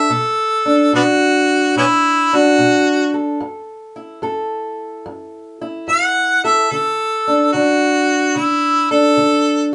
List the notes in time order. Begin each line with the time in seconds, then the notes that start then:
Already playing: A3 A4 E5
0.10 B2 A4
0.66 D4
0.93 B2 B3 D4 F#4
1.76 B2 B3 C#4 E4
2.33 D4 F#4
2.58 B2
3.14 A4
3.40 F#2
3.96 E4
4.22 F#2 A4
5.06 F#2
5.61 E4
5.88 F#2 F#5
6.44 A4 E5
6.71 D3 A4
7.28 D4
7.53 D3 D4 F#4
8.36 D3 E4
8.91 D4 A4
9.17 D3